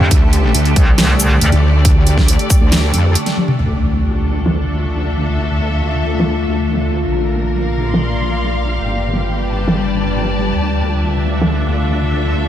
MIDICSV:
0, 0, Header, 1, 7, 480
1, 0, Start_track
1, 0, Key_signature, -1, "minor"
1, 0, Tempo, 434783
1, 121, Time_signature, 4, 2, 24, 8
1, 13780, End_track
2, 0, Start_track
2, 0, Title_t, "String section"
2, 0, Program_c, 0, 48
2, 0, Note_on_c, 0, 62, 77
2, 0, Note_on_c, 0, 69, 78
2, 0, Note_on_c, 0, 76, 79
2, 988, Note_on_c, 0, 74, 84
2, 1012, Note_off_c, 0, 76, 0
2, 3947, Note_off_c, 0, 62, 0
2, 3960, Note_on_c, 0, 62, 73
2, 3961, Note_off_c, 0, 69, 0
2, 3986, Note_off_c, 0, 74, 0
2, 4536, Note_on_c, 0, 69, 75
2, 5158, Note_on_c, 0, 76, 74
2, 7801, Note_on_c, 0, 70, 74
2, 7802, Note_off_c, 0, 69, 0
2, 7802, Note_off_c, 0, 76, 0
2, 8400, Note_on_c, 0, 77, 80
2, 8569, Note_off_c, 0, 62, 0
2, 8667, Note_on_c, 0, 84, 72
2, 9720, Note_on_c, 0, 67, 80
2, 9721, Note_off_c, 0, 70, 0
2, 9722, Note_off_c, 0, 84, 0
2, 10305, Note_on_c, 0, 74, 82
2, 10490, Note_off_c, 0, 77, 0
2, 10501, Note_on_c, 0, 81, 76
2, 11639, Note_on_c, 0, 62, 83
2, 12082, Note_on_c, 0, 76, 81
2, 12240, Note_on_c, 0, 69, 63
2, 12785, Note_off_c, 0, 74, 0
2, 13024, Note_off_c, 0, 81, 0
2, 13103, Note_off_c, 0, 67, 0
2, 13780, Note_off_c, 0, 62, 0
2, 13780, Note_off_c, 0, 69, 0
2, 13780, Note_off_c, 0, 76, 0
2, 13780, End_track
3, 0, Start_track
3, 0, Title_t, "Ambient pad"
3, 0, Program_c, 1, 92
3, 0, Note_on_c, 1, 50, 86
3, 0, Note_on_c, 1, 57, 78
3, 0, Note_on_c, 1, 67, 90
3, 3918, Note_off_c, 1, 50, 0
3, 3918, Note_off_c, 1, 57, 0
3, 3942, Note_off_c, 1, 67, 0
3, 3961, Note_on_c, 1, 57, 69
3, 3962, Note_on_c, 1, 50, 79
3, 3962, Note_on_c, 1, 65, 86
3, 7763, Note_off_c, 1, 57, 0
3, 7764, Note_off_c, 1, 50, 0
3, 7801, Note_on_c, 1, 58, 82
3, 7802, Note_on_c, 1, 74, 84
3, 9678, Note_off_c, 1, 65, 0
3, 9702, Note_off_c, 1, 58, 0
3, 9703, Note_off_c, 1, 74, 0
3, 9722, Note_on_c, 1, 71, 88
3, 9723, Note_on_c, 1, 55, 82
3, 9723, Note_on_c, 1, 62, 70
3, 11623, Note_off_c, 1, 55, 0
3, 11623, Note_off_c, 1, 62, 0
3, 11623, Note_off_c, 1, 71, 0
3, 11643, Note_on_c, 1, 50, 83
3, 11643, Note_on_c, 1, 57, 76
3, 11643, Note_on_c, 1, 65, 85
3, 13780, Note_off_c, 1, 50, 0
3, 13780, Note_off_c, 1, 57, 0
3, 13780, Note_off_c, 1, 65, 0
3, 13780, End_track
4, 0, Start_track
4, 0, Title_t, "Wobble bass"
4, 0, Program_c, 2, 39
4, 122, Note_on_c, 2, 38, 95
4, 583, Note_off_c, 2, 38, 0
4, 602, Note_on_c, 2, 38, 96
4, 823, Note_off_c, 2, 38, 0
4, 1682, Note_on_c, 2, 38, 100
4, 2623, Note_off_c, 2, 38, 0
4, 2882, Note_on_c, 2, 38, 98
4, 3223, Note_off_c, 2, 38, 0
4, 3242, Note_on_c, 2, 41, 99
4, 3482, Note_off_c, 2, 41, 0
4, 3962, Note_on_c, 2, 38, 82
4, 7778, Note_off_c, 2, 38, 0
4, 7803, Note_on_c, 2, 34, 85
4, 9698, Note_off_c, 2, 34, 0
4, 9723, Note_on_c, 2, 31, 83
4, 11618, Note_off_c, 2, 31, 0
4, 11642, Note_on_c, 2, 38, 82
4, 13780, Note_off_c, 2, 38, 0
4, 13780, End_track
5, 0, Start_track
5, 0, Title_t, "Wobble bass"
5, 0, Program_c, 3, 39
5, 1, Note_on_c, 3, 41, 96
5, 102, Note_off_c, 3, 41, 0
5, 842, Note_on_c, 3, 36, 101
5, 1543, Note_off_c, 3, 36, 0
5, 1561, Note_on_c, 3, 38, 101
5, 1663, Note_off_c, 3, 38, 0
5, 13780, End_track
6, 0, Start_track
6, 0, Title_t, "Impact"
6, 0, Program_c, 4, 103
6, 3962, Note_on_c, 4, 60, 69
6, 5882, Note_off_c, 4, 60, 0
6, 13780, End_track
7, 0, Start_track
7, 0, Title_t, "Drums"
7, 122, Note_on_c, 9, 36, 110
7, 122, Note_on_c, 9, 42, 81
7, 232, Note_off_c, 9, 36, 0
7, 233, Note_off_c, 9, 42, 0
7, 362, Note_on_c, 9, 42, 54
7, 473, Note_off_c, 9, 42, 0
7, 602, Note_on_c, 9, 42, 79
7, 713, Note_off_c, 9, 42, 0
7, 723, Note_on_c, 9, 42, 37
7, 833, Note_off_c, 9, 42, 0
7, 842, Note_on_c, 9, 36, 106
7, 842, Note_on_c, 9, 42, 52
7, 952, Note_off_c, 9, 36, 0
7, 952, Note_off_c, 9, 42, 0
7, 1082, Note_on_c, 9, 38, 117
7, 1082, Note_on_c, 9, 42, 78
7, 1192, Note_off_c, 9, 38, 0
7, 1192, Note_off_c, 9, 42, 0
7, 1321, Note_on_c, 9, 42, 56
7, 1321, Note_on_c, 9, 82, 88
7, 1432, Note_off_c, 9, 42, 0
7, 1432, Note_off_c, 9, 82, 0
7, 1561, Note_on_c, 9, 42, 82
7, 1672, Note_off_c, 9, 42, 0
7, 1682, Note_on_c, 9, 42, 38
7, 1792, Note_off_c, 9, 42, 0
7, 2041, Note_on_c, 9, 42, 79
7, 2042, Note_on_c, 9, 36, 112
7, 2152, Note_off_c, 9, 36, 0
7, 2152, Note_off_c, 9, 42, 0
7, 2281, Note_on_c, 9, 42, 55
7, 2391, Note_off_c, 9, 42, 0
7, 2401, Note_on_c, 9, 38, 37
7, 2402, Note_on_c, 9, 36, 59
7, 2512, Note_off_c, 9, 36, 0
7, 2512, Note_off_c, 9, 38, 0
7, 2521, Note_on_c, 9, 42, 81
7, 2632, Note_off_c, 9, 42, 0
7, 2642, Note_on_c, 9, 42, 39
7, 2752, Note_off_c, 9, 42, 0
7, 2761, Note_on_c, 9, 42, 53
7, 2761, Note_on_c, 9, 82, 55
7, 2762, Note_on_c, 9, 36, 109
7, 2872, Note_off_c, 9, 36, 0
7, 2872, Note_off_c, 9, 42, 0
7, 2872, Note_off_c, 9, 82, 0
7, 3002, Note_on_c, 9, 38, 115
7, 3002, Note_on_c, 9, 42, 80
7, 3113, Note_off_c, 9, 38, 0
7, 3113, Note_off_c, 9, 42, 0
7, 3242, Note_on_c, 9, 42, 58
7, 3352, Note_off_c, 9, 42, 0
7, 3482, Note_on_c, 9, 42, 84
7, 3592, Note_off_c, 9, 42, 0
7, 3603, Note_on_c, 9, 38, 35
7, 3603, Note_on_c, 9, 42, 39
7, 3713, Note_off_c, 9, 38, 0
7, 3713, Note_off_c, 9, 42, 0
7, 3722, Note_on_c, 9, 48, 63
7, 3833, Note_off_c, 9, 48, 0
7, 3842, Note_on_c, 9, 47, 74
7, 3953, Note_off_c, 9, 47, 0
7, 3962, Note_on_c, 9, 42, 74
7, 4072, Note_off_c, 9, 42, 0
7, 4202, Note_on_c, 9, 42, 49
7, 4312, Note_off_c, 9, 42, 0
7, 4442, Note_on_c, 9, 42, 74
7, 4552, Note_off_c, 9, 42, 0
7, 4562, Note_on_c, 9, 42, 35
7, 4672, Note_off_c, 9, 42, 0
7, 4682, Note_on_c, 9, 42, 48
7, 4792, Note_off_c, 9, 42, 0
7, 4922, Note_on_c, 9, 38, 108
7, 4922, Note_on_c, 9, 42, 77
7, 5033, Note_off_c, 9, 38, 0
7, 5033, Note_off_c, 9, 42, 0
7, 5162, Note_on_c, 9, 82, 79
7, 5273, Note_off_c, 9, 82, 0
7, 6842, Note_on_c, 9, 38, 113
7, 6952, Note_off_c, 9, 38, 0
7, 7442, Note_on_c, 9, 38, 36
7, 7552, Note_off_c, 9, 38, 0
7, 8762, Note_on_c, 9, 38, 109
7, 8873, Note_off_c, 9, 38, 0
7, 10083, Note_on_c, 9, 38, 34
7, 10193, Note_off_c, 9, 38, 0
7, 10682, Note_on_c, 9, 38, 114
7, 10793, Note_off_c, 9, 38, 0
7, 11283, Note_on_c, 9, 38, 35
7, 11393, Note_off_c, 9, 38, 0
7, 12602, Note_on_c, 9, 38, 112
7, 12713, Note_off_c, 9, 38, 0
7, 13780, End_track
0, 0, End_of_file